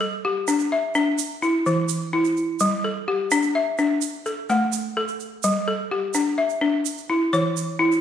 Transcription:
Already playing: balafon G3
0.01 balafon A4
0.25 balafon G4
0.48 balafon D4, shaker
0.59 shaker
0.72 balafon E5
0.95 balafon D4, shaker
1.18 shaker
1.42 balafon E4, shaker
1.66 balafon E3, shaker
1.89 shaker
2.13 balafon E4
2.25 shaker
2.37 shaker
2.60 balafon G3, shaker
2.84 balafon A4
3.08 balafon G4
3.31 balafon D4, shaker
3.43 shaker
3.55 balafon E5
3.78 balafon D4, shaker
4.01 shaker
4.26 balafon A4, shaker
4.49 balafon A3 F#5, shaker
4.72 shaker
4.97 balafon A4
5.08 shaker
5.20 shaker
5.43 balafon G3, shaker
5.68 balafon A4
5.91 balafon G4
6.14 balafon D4, shaker
6.38 balafon E5
6.49 shaker
6.61 balafon D4
6.85 shaker
6.98 shaker
7.10 balafon E4
7.33 balafon E3 C#5, shaker
7.57 shaker
7.79 balafon E4
7.92 shaker

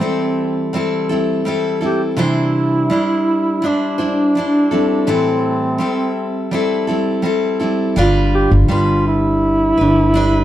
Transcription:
Already playing: steel-string acoustic guitar E3, duduk C4
0.00 steel-string acoustic guitar G3 C4 E4 A4
0.73 steel-string acoustic guitar G3 C4 E4 A4
1.09 steel-string acoustic guitar G3 C4 E4 A4
1.45 steel-string acoustic guitar G3 C4 E4 A4
1.81 steel-string acoustic guitar G3 C4 E4 A4
1.85 duduk G4
2.17 steel-string acoustic guitar C3 E3 G3 D4 E4 C5, duduk E4
2.90 steel-string acoustic guitar G3 D4 E4 C5
3.62 steel-string acoustic guitar G3 D4 E4 C5
3.67 duduk D4
3.98 steel-string acoustic guitar G3 D4 E4 C5
4.35 steel-string acoustic guitar G3 D4 E4 C5
4.71 steel-string acoustic guitar G3 C4 E4 A4
5.07 steel-string acoustic guitar A2 E3 G3 C4 E4 A4
5.12 duduk C4
5.78 steel-string acoustic guitar G3 C4 E4 A4
6.51 steel-string acoustic guitar G3 C4 E4 A4
6.87 steel-string acoustic guitar G3 C4 E4 A4
7.22 steel-string acoustic guitar G3 C4 E4 A4
7.59 steel-string acoustic guitar G3 C4 E4 A4
7.96 upright bass G1, steel-string acoustic guitar G3 D4 F4 B4
8.35 duduk G4
8.51 upright bass G1
8.68 upright bass G1, steel-string acoustic guitar G3 D4 B4, duduk F4
9.07 duduk E4
9.77 upright bass G1, steel-string acoustic guitar D4 B4
10.14 steel-string acoustic guitar G3 D4 B4

